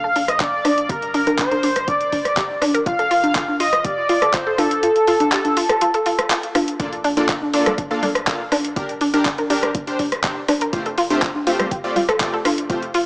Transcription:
Already playing: analog synth bass A#1, analog synth lead F5
0.04 synth arpeggio sound A4
0.16 synth arpeggio sound D4, open hi-hat
0.28 analog synth lead D#5, cross-stick, closed hi-hat
0.40 synth arpeggio sound D4, analog synth lead D5, kick, clap, closed hi-hat
0.65 synth arpeggio sound D4, cross-stick, open hi-hat, high conga
0.78 closed hi-hat
0.89 analog synth bass G1, synth arpeggio sound G4, analog synth lead A#4, kick, closed hi-hat
1.02 closed hi-hat
1.14 synth arpeggio sound D4, open hi-hat
1.27 synth arpeggio sound A#4, closed hi-hat, high conga
1.39 synth arpeggio sound D4, analog synth lead C5, kick, clap, closed hi-hat
1.51 synth arpeggio sound A#4, closed hi-hat, high conga
1.63 synth arpeggio sound D4, open hi-hat
1.76 cross-stick, closed hi-hat
1.88 synth arpeggio sound D4, analog synth lead D5, kick, closed hi-hat
2.01 closed hi-hat
2.12 synth arpeggio sound D4, kick, open hi-hat
2.25 cross-stick, closed hi-hat
2.37 synth arpeggio sound G4, kick, clap, closed hi-hat
2.62 synth arpeggio sound D4, cross-stick, open hi-hat, high conga
2.74 synth arpeggio sound A#4, closed hi-hat
2.86 analog synth bass F1, synth arpeggio sound F4, analog synth lead F5, kick, closed hi-hat
2.99 synth arpeggio sound A4, closed hi-hat
3.11 synth arpeggio sound F4, open hi-hat
3.23 closed hi-hat, high conga
3.35 synth arpeggio sound F4, kick, clap, closed hi-hat
3.48 high conga
3.60 synth arpeggio sound F4, analog synth lead D#5, open hi-hat
3.73 cross-stick, closed hi-hat
3.84 synth arpeggio sound G4, analog synth lead D5, kick, closed hi-hat
4.09 synth arpeggio sound F4, open hi-hat
4.22 synth arpeggio sound A4, cross-stick, closed hi-hat
4.34 synth arpeggio sound F4, analog synth lead C5, kick, clap, closed hi-hat
4.47 synth arpeggio sound A4
4.58 synth arpeggio sound F4, analog synth lead A4, cross-stick, open hi-hat, high conga
4.71 closed hi-hat
4.83 synth arpeggio sound F4, closed hi-hat
4.96 closed hi-hat
5.07 synth arpeggio sound F4, open hi-hat
5.20 closed hi-hat, high conga
5.32 synth arpeggio sound G4, clap, closed hi-hat
5.45 closed hi-hat, high conga
5.57 synth arpeggio sound F4, open hi-hat
5.69 synth arpeggio sound A4, cross-stick, closed hi-hat
5.81 synth arpeggio sound F4, closed hi-hat
5.94 synth arpeggio sound A4, closed hi-hat
6.06 synth arpeggio sound F4, open hi-hat
6.19 cross-stick, closed hi-hat
6.30 synth arpeggio sound F4, clap, closed hi-hat
6.43 closed hi-hat
6.55 synth arpeggio sound F4, cross-stick, open hi-hat, high conga
6.68 closed hi-hat
6.80 analog synth bass A#1, supersaw synth A#3 D4 F4 A4 D5, synth arpeggio sound D4, kick, closed hi-hat
6.93 closed hi-hat
7.04 synth arpeggio sound D4, open hi-hat
7.17 supersaw synth A#3 D4 F4 A4 D5, closed hi-hat, high conga
7.29 synth arpeggio sound F4, kick, clap, closed hi-hat
7.42 high conga
7.53 supersaw synth A#3 D4 F4 A4 D5, synth arpeggio sound D4, open hi-hat
7.66 synth arpeggio sound A4, cross-stick, closed hi-hat, low conga
7.78 synth arpeggio sound D4, kick, closed hi-hat
7.91 supersaw synth A#3 D4 F4 A4 F5, synth arpeggio sound A4
8.03 synth arpeggio sound D4, open hi-hat, low conga
8.15 cross-stick, closed hi-hat
8.27 supersaw synth A#3 D4 F4 A4 F5, synth arpeggio sound D4, kick, clap, closed hi-hat
8.52 synth arpeggio sound D4, cross-stick, open hi-hat, high conga
8.65 closed hi-hat
8.76 analog synth bass G1, supersaw synth D4 G4 A#4, synth arpeggio sound G4, kick, closed hi-hat
8.89 closed hi-hat
9.01 synth arpeggio sound D4, open hi-hat
9.14 supersaw synth D4 G4 A#4, synth arpeggio sound A#4, closed hi-hat, high conga
9.25 synth arpeggio sound D4, kick, clap, closed hi-hat
9.38 synth arpeggio sound A#4, closed hi-hat, high conga
9.50 supersaw synth D4 G4 A#4, synth arpeggio sound D4, open hi-hat
9.63 cross-stick, closed hi-hat
9.75 synth arpeggio sound D4, kick, closed hi-hat
9.87 supersaw synth D4 G4 C5, closed hi-hat
9.99 synth arpeggio sound D4, kick, open hi-hat
10.12 cross-stick, closed hi-hat
10.24 supersaw synth D4 G4 C5, synth arpeggio sound G4, kick, clap, closed hi-hat
10.48 synth arpeggio sound D4, cross-stick, open hi-hat, high conga
10.61 synth arpeggio sound A#4, closed hi-hat
10.73 analog synth bass F1, supersaw synth A3 C4 F4 G4 C5, synth arpeggio sound F4, kick, closed hi-hat
10.86 synth arpeggio sound A4, closed hi-hat
10.98 synth arpeggio sound F4, open hi-hat
11.10 supersaw synth A3 C4 F4 G4 C5, closed hi-hat, high conga
11.22 synth arpeggio sound F4, kick, clap, closed hi-hat
11.35 high conga
11.47 supersaw synth A3 C4 F4 G4 C5, synth arpeggio sound F4, open hi-hat
11.59 cross-stick, closed hi-hat, low conga
11.71 synth arpeggio sound G4, kick, closed hi-hat
11.84 supersaw synth A3 C4 F4 G4 D5
11.96 synth arpeggio sound F4, open hi-hat, low conga
12.09 synth arpeggio sound A4, cross-stick, closed hi-hat
12.20 supersaw synth A3 C4 F4 G4 D5, synth arpeggio sound F4, kick, clap, closed hi-hat
12.34 synth arpeggio sound A4
12.45 synth arpeggio sound F4, cross-stick, open hi-hat, high conga
12.58 closed hi-hat
12.70 analog synth bass F1, supersaw synth A3 C4 F4 G4 C5, synth arpeggio sound F4, kick, closed hi-hat
12.82 closed hi-hat
12.94 synth arpeggio sound F4, open hi-hat

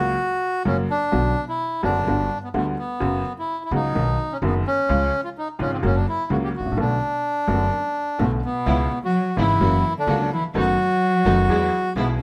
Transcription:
Already playing: upright bass C#2, upright piano C#2 C#3 F#3 A#3 F#4, bandoneon F#4
0.65 upright bass F#1, upright piano F#2 C#3 F#3 A#3 F#4, bandoneon C#4
0.90 bandoneon D4
1.12 upright piano B1 B2 D3 F#3 B3 F#4, upright bass B1
1.49 bandoneon E4
1.83 upright piano F#1 F#2 D3 F#3 B3 F#4, upright bass F#1, bandoneon D4
2.07 upright bass G1, upright piano G1 G2 D3 G3 B3 F#4
2.44 bandoneon B3
2.54 upright bass D2, upright piano D2 D3 G3 B3 F#4, bandoneon A3
2.78 bandoneon B3
3.00 upright bass F#1, upright piano F#2 C#3 F#3 B3 F#4
3.39 bandoneon E4
3.64 bandoneon E4
3.71 upright bass C#2, upright piano C#2 C#3 F#3 B3 F#4, bandoneon D#4
3.95 upright bass B1, upright piano B1 B2 D#3 F#3 B3 F#4
4.32 bandoneon C#4
4.42 upright bass F#1, upright piano F#1 F#2 D#3 F#3 B3 F#4, bandoneon B3
4.67 bandoneon C#4
4.89 upright piano C#2 C#3 F3 G#3 F4, upright bass C#2
5.24 bandoneon F4
5.38 bandoneon D#4
5.59 upright piano G#1 G#2 C#3 F3 G#3 F4, upright bass G#1, bandoneon C#4
5.72 bandoneon C4
5.83 upright bass F#1, upright piano F#2 C#3 F#3 A#3 F#4, bandoneon C#4
5.96 bandoneon D4
6.09 bandoneon E4
6.30 upright bass C#2, upright piano C#2 C#3 F#3 A#3 F#4, bandoneon F#4
6.44 bandoneon G4
6.56 upright bass G#1, upright piano G#1, bandoneon F#4
6.65 upright bass A1, upright piano A1
6.71 upright bass A#1, upright piano A#1
6.77 upright bass B1, upright piano B1 B2 D3 A3 B3 F#4, bandoneon D4
7.48 upright piano F#1 F#2 D3 A3 B3 F#4, upright bass F#1
8.19 upright piano B1 B2 D3 A3 B3 F#4, upright bass B1, cello A2, bandoneon A3
8.44 cello B2, bandoneon B3
8.66 upright bass C#2, upright piano C#2 C#3 G#3 B3 E4, string section B3 C#4 E4
9.03 cello F#3, bandoneon F#4
9.37 upright piano G#1 G#2 C#3 G#3 B3 E4, upright bass G#1, cello E3, string section B3 C#4 E4, bandoneon E4
9.60 upright bass F#1, upright piano F#2 C#3 F#3 A#3 F#4, string section A#3 C#4 F#4
9.98 cello D3, bandoneon D4
10.07 upright bass C#2, upright piano C#2 C#3 F#3 A#3 F#4, string section A#3 C#4 F#4
10.33 cello E3, bandoneon E4
10.54 upright bass F#1, upright piano F#2 D#3 F#3 A3 B3 F#4, cello F#3, string section A3 B3 D#4, bandoneon F#4
11.25 upright bass F#1, upright piano F#2 D#3 F#3 A3 B3 F#4, string section A3 B3 D#4
11.48 upright bass E2, upright piano E2 E3 G#3 B3 G#4, string section G#3 B3 E4
11.96 upright bass B1, upright piano B1 B2 E3 G#3 B3 G#4, cello B2, string section G#3 B3 E4, bandoneon B3

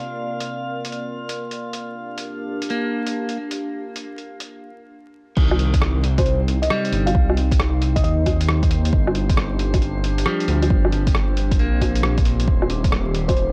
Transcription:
Already playing: ambient pad C3 A#3 C4 A#4 D5, synth texture F4 F5
0.40 closed hi-hat
0.85 closed hi-hat
0.92 closed hi-hat
1.29 closed hi-hat
1.51 closed hi-hat
1.73 closed hi-hat
1.82 ambient pad D4
1.88 ambient pad G4
2.18 closed hi-hat
2.62 closed hi-hat
2.70 clean electric guitar A#3, closed hi-hat
3.07 closed hi-hat
3.29 closed hi-hat
3.51 closed hi-hat
3.96 closed hi-hat
4.18 closed hi-hat
4.40 closed hi-hat
5.37 detuned saw bass C2, ambient pad C3, clean electric guitar D#3, synth texture C4 C5, kick, crash
5.51 ambient pad C4, low woodblock
5.59 open hi-hat
5.74 kick, closed hi-hat
5.82 ambient pad D#4, cross-stick
6.04 open hi-hat
6.18 fm electric piano C5, kick, closed hi-hat, low woodblock
6.26 closed hi-hat
6.48 open hi-hat
6.62 fm electric piano D#5, closed hi-hat
6.70 clean electric guitar G3, cross-stick
6.85 closed hi-hat
6.92 detuned saw bass G1, open hi-hat
7.06 fm electric piano F5, closed hi-hat, low woodblock
7.15 detuned saw bass C2, kick
7.30 low woodblock
7.37 open hi-hat
7.52 kick, closed hi-hat
7.60 cross-stick, open hi-hat
7.82 open hi-hat
7.96 fm electric piano D#5, kick, closed hi-hat
8.04 detuned saw bass D#2, fm electric piano D#5, closed hi-hat
8.26 kick, open hi-hat, low woodblock
8.41 closed hi-hat
8.49 cross-stick
8.63 kick, closed hi-hat
8.71 open hi-hat
8.85 closed hi-hat
8.93 detuned saw bass G1, ambient pad D4, kick
9.03 ambient pad G4
9.07 low woodblock
9.15 open hi-hat
9.29 kick, closed hi-hat
9.37 cross-stick
9.59 open hi-hat
9.74 kick, closed hi-hat, low woodblock
9.82 closed hi-hat
10.04 open hi-hat
10.18 closed hi-hat
10.26 clean electric guitar F3 G3, cross-stick
10.40 closed hi-hat
10.48 detuned saw bass D2, open hi-hat
10.63 closed hi-hat, low woodblock
10.70 detuned saw bass G1, kick
10.85 low woodblock
10.92 open hi-hat
11.07 kick, closed hi-hat
11.15 cross-stick, open hi-hat
11.37 open hi-hat
11.51 kick, closed hi-hat
11.59 detuned saw bass A#1, clean electric guitar A#3, closed hi-hat
11.81 kick, open hi-hat, low woodblock
11.95 closed hi-hat
12.03 cross-stick
12.18 kick, closed hi-hat
12.25 open hi-hat
12.40 closed hi-hat
12.48 detuned saw bass D#1, ambient pad D#3, kick
12.62 low woodblock
12.68 ambient pad D#4, open hi-hat
12.74 ambient pad F4
12.84 kick, closed hi-hat
12.92 cross-stick
13.10 ambient pad D#5
13.14 open hi-hat
13.28 fm electric piano C5, kick, closed hi-hat, low woodblock
13.37 closed hi-hat

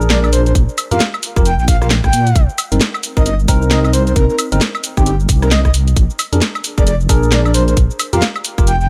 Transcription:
Already playing: wobble bass A#1, tine electric piano D4 G#4 A#4
0.01 shaker
0.10 soft synth lead D5, snare, closed hi-hat, shaker
0.24 soft synth lead D5, high woodblock, shaker
0.33 soft synth lead C5, open hi-hat, shaker
0.46 soft synth lead C5, closed hi-hat, shaker
0.55 wobble bass A#1, kick, closed hi-hat, shaker
0.69 shaker
0.78 open hi-hat, high woodblock, shaker
0.91 wobble bass F2, tine electric piano F4 G4 A#4, soft synth lead F5, closed hi-hat, shaker
1.00 snare, closed hi-hat, shaker
1.14 high woodblock, shaker
1.23 open hi-hat, shaker
1.36 wobble bass F1, tine electric piano F4 G4 A#4, kick, cross-stick, shaker
1.45 soft synth lead G5, closed hi-hat, shaker
1.59 wobble bass A#1, soft synth lead G5, shaker
1.68 soft synth lead F5, kick, open hi-hat, shaker
1.82 tine electric piano F4 G4 A#4, soft synth lead F5, cross-stick, shaker
1.91 snare, closed hi-hat, shaker
2.04 wobble bass A#1, soft synth lead G5, kick, cross-stick, shaker
2.13 wobble bass A#2, open hi-hat, shaker
2.27 closed hi-hat, shaker
2.36 wobble bass C2, kick, closed hi-hat, shaker
2.49 shaker
2.58 open hi-hat, high woodblock, shaker
2.72 wobble bass G1, tine electric piano C4 D#4 A#4, closed hi-hat, shaker
2.81 snare, closed hi-hat, shaker
2.94 high woodblock, shaker
3.03 open hi-hat, shaker
3.17 wobble bass G1, tine electric piano C4 D#4 A#4, soft synth lead D#5, kick, shaker
3.26 soft synth lead D#5, closed hi-hat, shaker
3.39 shaker
3.48 wobble bass C2, tine electric piano C4 D#4 A#4, kick, open hi-hat, shaker
3.62 shaker
3.71 soft synth lead D#5, snare, closed hi-hat, shaker
3.84 soft synth lead D#5, high woodblock, shaker
3.93 soft synth lead C5, open hi-hat, shaker
4.07 soft synth lead C5, closed hi-hat, shaker
4.16 wobble bass C2, soft synth lead A#4, kick, closed hi-hat, shaker
4.29 soft synth lead A#4, shaker
4.39 open hi-hat, high woodblock, shaker
4.52 wobble bass G1, tine electric piano C4 D#4 A#4, closed hi-hat, shaker
4.61 snare, closed hi-hat, shaker
4.75 high woodblock, shaker
4.84 open hi-hat, shaker
4.97 wobble bass G1, tine electric piano C4 D#4 G4, soft synth lead G4, kick, cross-stick, shaker
5.06 soft synth lead G4, closed hi-hat, shaker
5.20 shaker
5.29 wobble bass C2, kick, open hi-hat, shaker
5.42 tine electric piano C4 D#4 A#4, soft synth lead A#4, cross-stick, shaker
5.51 soft synth lead D#5, snare, closed hi-hat, shaker
5.65 soft synth lead D#5, kick, cross-stick, shaker
5.74 open hi-hat, shaker
5.88 closed hi-hat, shaker
5.96 wobble bass A#1, kick, closed hi-hat, shaker
6.10 shaker
6.19 open hi-hat, high woodblock, shaker
6.33 wobble bass F2, tine electric piano D4 G#4 A#4, closed hi-hat, shaker
6.42 snare, closed hi-hat, shaker
6.55 high woodblock, shaker
6.64 open hi-hat, shaker
6.78 wobble bass F1, tine electric piano D4 G#4 A#4, soft synth lead D5, kick, shaker
6.87 soft synth lead D5, closed hi-hat, shaker
7.00 shaker
7.09 wobble bass A#1, tine electric piano D4 G#4 A#4, kick, open hi-hat, shaker
7.23 shaker
7.32 soft synth lead D5, snare, closed hi-hat, shaker
7.45 soft synth lead D5, high woodblock, shaker
7.54 soft synth lead C5, open hi-hat, shaker
7.68 soft synth lead C5, closed hi-hat, shaker
7.77 wobble bass A#1, kick, closed hi-hat, shaker
7.90 shaker
7.99 open hi-hat, high woodblock, shaker
8.13 wobble bass F2, tine electric piano F4 G4 A#4, soft synth lead F5, closed hi-hat, shaker
8.22 snare, closed hi-hat, shaker
8.36 high woodblock, shaker
8.45 open hi-hat, shaker
8.58 wobble bass F1, tine electric piano F4 G4 A#4, kick, cross-stick, shaker
8.67 soft synth lead G5, closed hi-hat, shaker
8.81 soft synth lead G5, shaker

